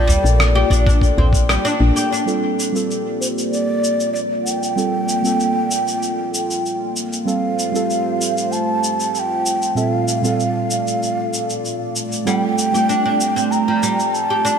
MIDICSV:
0, 0, Header, 1, 8, 480
1, 0, Start_track
1, 0, Key_signature, -2, "minor"
1, 0, Tempo, 625000
1, 1739, Time_signature, 4, 2, 24, 8
1, 11204, End_track
2, 0, Start_track
2, 0, Title_t, "Bansuri"
2, 0, Program_c, 0, 73
2, 0, Note_on_c, 0, 74, 105
2, 1223, Note_off_c, 0, 74, 0
2, 2462, Note_on_c, 0, 72, 74
2, 2515, Note_off_c, 0, 72, 0
2, 2700, Note_on_c, 0, 74, 89
2, 3149, Note_off_c, 0, 74, 0
2, 3172, Note_on_c, 0, 74, 86
2, 3227, Note_off_c, 0, 74, 0
2, 3411, Note_on_c, 0, 79, 106
2, 5304, Note_off_c, 0, 79, 0
2, 5582, Note_on_c, 0, 77, 93
2, 6541, Note_on_c, 0, 81, 98
2, 6553, Note_off_c, 0, 77, 0
2, 7022, Note_off_c, 0, 81, 0
2, 7022, Note_on_c, 0, 81, 89
2, 7060, Note_on_c, 0, 79, 97
2, 7068, Note_off_c, 0, 81, 0
2, 7503, Note_on_c, 0, 76, 86
2, 7515, Note_off_c, 0, 79, 0
2, 7611, Note_off_c, 0, 76, 0
2, 7611, Note_on_c, 0, 77, 86
2, 9181, Note_off_c, 0, 77, 0
2, 9415, Note_on_c, 0, 78, 102
2, 9507, Note_off_c, 0, 78, 0
2, 9507, Note_on_c, 0, 79, 102
2, 10378, Note_on_c, 0, 82, 96
2, 10389, Note_off_c, 0, 79, 0
2, 10855, Note_on_c, 0, 81, 97
2, 10866, Note_off_c, 0, 82, 0
2, 11204, Note_off_c, 0, 81, 0
2, 11204, End_track
3, 0, Start_track
3, 0, Title_t, "Analog synth pad"
3, 0, Program_c, 1, 89
3, 0, Note_on_c, 1, 58, 72
3, 0, Note_on_c, 1, 65, 69
3, 0, Note_on_c, 1, 69, 72
3, 0, Note_on_c, 1, 74, 88
3, 1711, Note_off_c, 1, 65, 0
3, 1724, Note_off_c, 1, 74, 0
3, 1725, Note_off_c, 1, 58, 0
3, 1725, Note_off_c, 1, 69, 0
3, 1743, Note_on_c, 1, 74, 77
3, 1744, Note_on_c, 1, 58, 70
3, 1746, Note_on_c, 1, 65, 65
3, 1747, Note_on_c, 1, 67, 65
3, 3644, Note_off_c, 1, 67, 0
3, 3663, Note_on_c, 1, 69, 67
3, 5550, Note_off_c, 1, 74, 0
3, 5551, Note_off_c, 1, 58, 0
3, 5562, Note_off_c, 1, 69, 0
3, 5577, Note_on_c, 1, 67, 66
3, 5578, Note_on_c, 1, 72, 82
3, 5581, Note_on_c, 1, 57, 70
3, 7479, Note_off_c, 1, 67, 0
3, 7480, Note_off_c, 1, 72, 0
3, 7481, Note_off_c, 1, 57, 0
3, 7491, Note_on_c, 1, 69, 66
3, 7492, Note_on_c, 1, 57, 73
3, 7495, Note_on_c, 1, 74, 77
3, 9392, Note_off_c, 1, 65, 0
3, 9396, Note_off_c, 1, 69, 0
3, 9412, Note_on_c, 1, 65, 66
3, 9414, Note_on_c, 1, 67, 67
3, 11204, Note_off_c, 1, 57, 0
3, 11204, Note_off_c, 1, 65, 0
3, 11204, Note_off_c, 1, 67, 0
3, 11204, Note_off_c, 1, 74, 0
3, 11204, End_track
4, 0, Start_track
4, 0, Title_t, "Oud"
4, 0, Program_c, 2, 24
4, 58, Note_on_c, 2, 55, 93
4, 177, Note_off_c, 2, 55, 0
4, 426, Note_on_c, 2, 67, 78
4, 534, Note_off_c, 2, 67, 0
4, 544, Note_on_c, 2, 62, 101
4, 657, Note_off_c, 2, 62, 0
4, 666, Note_on_c, 2, 62, 77
4, 774, Note_off_c, 2, 62, 0
4, 908, Note_on_c, 2, 60, 67
4, 971, Note_off_c, 2, 60, 0
4, 1149, Note_on_c, 2, 55, 106
4, 1256, Note_off_c, 2, 55, 0
4, 1266, Note_on_c, 2, 62, 102
4, 1381, Note_off_c, 2, 62, 0
4, 1506, Note_on_c, 2, 67, 79
4, 1615, Note_off_c, 2, 67, 0
4, 1631, Note_on_c, 2, 62, 76
4, 1693, Note_off_c, 2, 62, 0
4, 9423, Note_on_c, 2, 55, 85
4, 9540, Note_off_c, 2, 55, 0
4, 9786, Note_on_c, 2, 67, 62
4, 9895, Note_off_c, 2, 67, 0
4, 9902, Note_on_c, 2, 62, 87
4, 10017, Note_off_c, 2, 62, 0
4, 10027, Note_on_c, 2, 62, 71
4, 10135, Note_off_c, 2, 62, 0
4, 10263, Note_on_c, 2, 60, 71
4, 10329, Note_off_c, 2, 60, 0
4, 10507, Note_on_c, 2, 53, 64
4, 10615, Note_off_c, 2, 53, 0
4, 10622, Note_on_c, 2, 55, 83
4, 10739, Note_off_c, 2, 55, 0
4, 10985, Note_on_c, 2, 67, 67
4, 11093, Note_off_c, 2, 67, 0
4, 11096, Note_on_c, 2, 62, 92
4, 11204, Note_off_c, 2, 62, 0
4, 11204, End_track
5, 0, Start_track
5, 0, Title_t, "Synth keys"
5, 0, Program_c, 3, 88
5, 1734, Note_on_c, 3, 55, 67
5, 1740, Note_on_c, 3, 60, 65
5, 1743, Note_on_c, 3, 65, 62
5, 1748, Note_on_c, 3, 69, 73
5, 1902, Control_c, 3, 64, 127
5, 2072, Note_off_c, 3, 55, 0
5, 2075, Note_off_c, 3, 60, 0
5, 2076, Note_off_c, 3, 65, 0
5, 2079, Note_off_c, 3, 69, 0
5, 2092, Note_on_c, 3, 55, 72
5, 2100, Note_on_c, 3, 60, 64
5, 2111, Note_on_c, 3, 65, 67
5, 2122, Note_on_c, 3, 69, 79
5, 3625, Note_off_c, 3, 55, 0
5, 3630, Note_off_c, 3, 60, 0
5, 3635, Note_off_c, 3, 65, 0
5, 3640, Note_off_c, 3, 69, 0
5, 3654, Note_on_c, 3, 55, 68
5, 3660, Note_on_c, 3, 60, 66
5, 3665, Note_on_c, 3, 65, 61
5, 3670, Note_on_c, 3, 69, 74
5, 3992, Note_off_c, 3, 55, 0
5, 3995, Note_off_c, 3, 60, 0
5, 3997, Note_off_c, 3, 65, 0
5, 4000, Note_off_c, 3, 69, 0
5, 4011, Note_on_c, 3, 55, 69
5, 4022, Note_on_c, 3, 60, 65
5, 4033, Note_on_c, 3, 65, 60
5, 4044, Note_on_c, 3, 69, 79
5, 5545, Note_off_c, 3, 55, 0
5, 5550, Note_off_c, 3, 60, 0
5, 5556, Note_off_c, 3, 65, 0
5, 5562, Note_off_c, 3, 69, 0
5, 5570, Note_on_c, 3, 55, 72
5, 5576, Note_on_c, 3, 60, 64
5, 5581, Note_on_c, 3, 65, 65
5, 5587, Note_on_c, 3, 69, 80
5, 5589, Control_c, 3, 64, 0
5, 5739, Control_c, 3, 64, 127
5, 5910, Note_off_c, 3, 55, 0
5, 5913, Note_off_c, 3, 60, 0
5, 5915, Note_off_c, 3, 65, 0
5, 5918, Note_off_c, 3, 69, 0
5, 5929, Note_on_c, 3, 55, 79
5, 5940, Note_on_c, 3, 60, 67
5, 5949, Note_on_c, 3, 65, 70
5, 5959, Note_on_c, 3, 69, 89
5, 7464, Note_off_c, 3, 55, 0
5, 7469, Note_off_c, 3, 60, 0
5, 7474, Note_off_c, 3, 65, 0
5, 7479, Note_off_c, 3, 69, 0
5, 7487, Note_on_c, 3, 46, 71
5, 7491, Note_on_c, 3, 55, 62
5, 7495, Note_on_c, 3, 60, 67
5, 7502, Note_on_c, 3, 65, 69
5, 7504, Note_on_c, 3, 69, 78
5, 7508, Control_c, 3, 64, 0
5, 7661, Control_c, 3, 64, 127
5, 7828, Note_off_c, 3, 46, 0
5, 7830, Note_off_c, 3, 55, 0
5, 7832, Note_off_c, 3, 60, 0
5, 7836, Note_off_c, 3, 65, 0
5, 7837, Note_off_c, 3, 69, 0
5, 7847, Note_on_c, 3, 46, 72
5, 7855, Note_on_c, 3, 55, 65
5, 7861, Note_on_c, 3, 60, 68
5, 7870, Note_on_c, 3, 65, 62
5, 7877, Note_on_c, 3, 69, 76
5, 9383, Note_off_c, 3, 46, 0
5, 9387, Note_off_c, 3, 55, 0
5, 9390, Note_off_c, 3, 60, 0
5, 9395, Note_off_c, 3, 65, 0
5, 9398, Note_off_c, 3, 69, 0
5, 9409, Note_on_c, 3, 55, 70
5, 9412, Note_on_c, 3, 60, 66
5, 9417, Note_on_c, 3, 65, 68
5, 9424, Note_on_c, 3, 69, 81
5, 9429, Control_c, 3, 64, 0
5, 9543, Control_c, 3, 64, 127
5, 9749, Note_off_c, 3, 55, 0
5, 9751, Note_off_c, 3, 60, 0
5, 9753, Note_off_c, 3, 65, 0
5, 9757, Note_off_c, 3, 69, 0
5, 9770, Note_on_c, 3, 55, 74
5, 9778, Note_on_c, 3, 60, 70
5, 9789, Note_on_c, 3, 65, 67
5, 9800, Note_on_c, 3, 57, 79
5, 11204, Note_off_c, 3, 55, 0
5, 11204, Note_off_c, 3, 57, 0
5, 11204, Note_off_c, 3, 60, 0
5, 11204, Note_off_c, 3, 65, 0
5, 11204, End_track
6, 0, Start_track
6, 0, Title_t, "FM bass"
6, 0, Program_c, 4, 39
6, 0, Note_on_c, 4, 34, 96
6, 134, Note_off_c, 4, 34, 0
6, 186, Note_on_c, 4, 34, 90
6, 494, Note_off_c, 4, 34, 0
6, 540, Note_on_c, 4, 34, 92
6, 855, Note_off_c, 4, 34, 0
6, 904, Note_on_c, 4, 34, 102
6, 1213, Note_off_c, 4, 34, 0
6, 1385, Note_on_c, 4, 34, 97
6, 1471, Note_off_c, 4, 34, 0
6, 11204, End_track
7, 0, Start_track
7, 0, Title_t, "Udu"
7, 64, Note_on_c, 9, 64, 84
7, 140, Note_off_c, 9, 64, 0
7, 906, Note_on_c, 9, 64, 77
7, 983, Note_off_c, 9, 64, 0
7, 11204, End_track
8, 0, Start_track
8, 0, Title_t, "Drums"
8, 73, Note_on_c, 9, 69, 68
8, 150, Note_off_c, 9, 69, 0
8, 198, Note_on_c, 9, 69, 43
8, 275, Note_off_c, 9, 69, 0
8, 307, Note_on_c, 9, 37, 77
8, 314, Note_on_c, 9, 69, 29
8, 384, Note_off_c, 9, 37, 0
8, 391, Note_off_c, 9, 69, 0
8, 540, Note_on_c, 9, 36, 55
8, 555, Note_on_c, 9, 69, 71
8, 616, Note_off_c, 9, 36, 0
8, 632, Note_off_c, 9, 69, 0
8, 664, Note_on_c, 9, 36, 99
8, 681, Note_on_c, 9, 69, 41
8, 741, Note_off_c, 9, 36, 0
8, 758, Note_off_c, 9, 69, 0
8, 779, Note_on_c, 9, 36, 60
8, 792, Note_on_c, 9, 69, 30
8, 856, Note_off_c, 9, 36, 0
8, 869, Note_off_c, 9, 69, 0
8, 1019, Note_on_c, 9, 36, 104
8, 1030, Note_on_c, 9, 69, 74
8, 1096, Note_off_c, 9, 36, 0
8, 1107, Note_off_c, 9, 69, 0
8, 1146, Note_on_c, 9, 37, 71
8, 1153, Note_on_c, 9, 69, 40
8, 1223, Note_off_c, 9, 37, 0
8, 1230, Note_off_c, 9, 69, 0
8, 1271, Note_on_c, 9, 69, 29
8, 1348, Note_off_c, 9, 69, 0
8, 1508, Note_on_c, 9, 69, 79
8, 1585, Note_off_c, 9, 69, 0
8, 1637, Note_on_c, 9, 69, 40
8, 1714, Note_off_c, 9, 69, 0
8, 1749, Note_on_c, 9, 69, 28
8, 1826, Note_off_c, 9, 69, 0
8, 1993, Note_on_c, 9, 69, 61
8, 2070, Note_off_c, 9, 69, 0
8, 2118, Note_on_c, 9, 69, 38
8, 2195, Note_off_c, 9, 69, 0
8, 2233, Note_on_c, 9, 69, 27
8, 2309, Note_off_c, 9, 69, 0
8, 2473, Note_on_c, 9, 69, 66
8, 2550, Note_off_c, 9, 69, 0
8, 2598, Note_on_c, 9, 69, 37
8, 2675, Note_off_c, 9, 69, 0
8, 2712, Note_on_c, 9, 69, 27
8, 2789, Note_off_c, 9, 69, 0
8, 2949, Note_on_c, 9, 69, 63
8, 3026, Note_off_c, 9, 69, 0
8, 3073, Note_on_c, 9, 69, 38
8, 3150, Note_off_c, 9, 69, 0
8, 3190, Note_on_c, 9, 69, 25
8, 3267, Note_off_c, 9, 69, 0
8, 3430, Note_on_c, 9, 69, 64
8, 3507, Note_off_c, 9, 69, 0
8, 3556, Note_on_c, 9, 69, 35
8, 3633, Note_off_c, 9, 69, 0
8, 3669, Note_on_c, 9, 69, 29
8, 3746, Note_off_c, 9, 69, 0
8, 3906, Note_on_c, 9, 69, 65
8, 3983, Note_off_c, 9, 69, 0
8, 4029, Note_on_c, 9, 69, 38
8, 4106, Note_off_c, 9, 69, 0
8, 4147, Note_on_c, 9, 69, 29
8, 4223, Note_off_c, 9, 69, 0
8, 4384, Note_on_c, 9, 69, 70
8, 4461, Note_off_c, 9, 69, 0
8, 4512, Note_on_c, 9, 69, 36
8, 4589, Note_off_c, 9, 69, 0
8, 4628, Note_on_c, 9, 69, 32
8, 4705, Note_off_c, 9, 69, 0
8, 4871, Note_on_c, 9, 69, 68
8, 4948, Note_off_c, 9, 69, 0
8, 4996, Note_on_c, 9, 69, 38
8, 5073, Note_off_c, 9, 69, 0
8, 5111, Note_on_c, 9, 69, 25
8, 5188, Note_off_c, 9, 69, 0
8, 5347, Note_on_c, 9, 69, 67
8, 5424, Note_off_c, 9, 69, 0
8, 5473, Note_on_c, 9, 69, 38
8, 5550, Note_off_c, 9, 69, 0
8, 5592, Note_on_c, 9, 69, 30
8, 5668, Note_off_c, 9, 69, 0
8, 5828, Note_on_c, 9, 69, 67
8, 5905, Note_off_c, 9, 69, 0
8, 5955, Note_on_c, 9, 69, 38
8, 6032, Note_off_c, 9, 69, 0
8, 6068, Note_on_c, 9, 69, 29
8, 6145, Note_off_c, 9, 69, 0
8, 6307, Note_on_c, 9, 69, 68
8, 6384, Note_off_c, 9, 69, 0
8, 6431, Note_on_c, 9, 69, 39
8, 6508, Note_off_c, 9, 69, 0
8, 6545, Note_on_c, 9, 69, 31
8, 6621, Note_off_c, 9, 69, 0
8, 6786, Note_on_c, 9, 69, 69
8, 6863, Note_off_c, 9, 69, 0
8, 6911, Note_on_c, 9, 69, 38
8, 6987, Note_off_c, 9, 69, 0
8, 7026, Note_on_c, 9, 69, 29
8, 7103, Note_off_c, 9, 69, 0
8, 7264, Note_on_c, 9, 69, 72
8, 7341, Note_off_c, 9, 69, 0
8, 7388, Note_on_c, 9, 69, 37
8, 7465, Note_off_c, 9, 69, 0
8, 7503, Note_on_c, 9, 69, 29
8, 7580, Note_off_c, 9, 69, 0
8, 7741, Note_on_c, 9, 69, 70
8, 7818, Note_off_c, 9, 69, 0
8, 7868, Note_on_c, 9, 69, 43
8, 7945, Note_off_c, 9, 69, 0
8, 7985, Note_on_c, 9, 69, 30
8, 8062, Note_off_c, 9, 69, 0
8, 8222, Note_on_c, 9, 69, 67
8, 8299, Note_off_c, 9, 69, 0
8, 8351, Note_on_c, 9, 69, 38
8, 8428, Note_off_c, 9, 69, 0
8, 8469, Note_on_c, 9, 69, 31
8, 8546, Note_off_c, 9, 69, 0
8, 8706, Note_on_c, 9, 69, 65
8, 8782, Note_off_c, 9, 69, 0
8, 8830, Note_on_c, 9, 69, 38
8, 8906, Note_off_c, 9, 69, 0
8, 8947, Note_on_c, 9, 69, 27
8, 9024, Note_off_c, 9, 69, 0
8, 9183, Note_on_c, 9, 69, 71
8, 9260, Note_off_c, 9, 69, 0
8, 9309, Note_on_c, 9, 69, 38
8, 9386, Note_off_c, 9, 69, 0
8, 9424, Note_on_c, 9, 69, 29
8, 9501, Note_off_c, 9, 69, 0
8, 9663, Note_on_c, 9, 69, 64
8, 9740, Note_off_c, 9, 69, 0
8, 9789, Note_on_c, 9, 69, 42
8, 9866, Note_off_c, 9, 69, 0
8, 9903, Note_on_c, 9, 69, 29
8, 9980, Note_off_c, 9, 69, 0
8, 10141, Note_on_c, 9, 69, 68
8, 10218, Note_off_c, 9, 69, 0
8, 10267, Note_on_c, 9, 69, 37
8, 10344, Note_off_c, 9, 69, 0
8, 10384, Note_on_c, 9, 69, 30
8, 10461, Note_off_c, 9, 69, 0
8, 10621, Note_on_c, 9, 69, 67
8, 10697, Note_off_c, 9, 69, 0
8, 10749, Note_on_c, 9, 69, 37
8, 10825, Note_off_c, 9, 69, 0
8, 10864, Note_on_c, 9, 69, 27
8, 10941, Note_off_c, 9, 69, 0
8, 11103, Note_on_c, 9, 69, 70
8, 11180, Note_off_c, 9, 69, 0
8, 11204, End_track
0, 0, End_of_file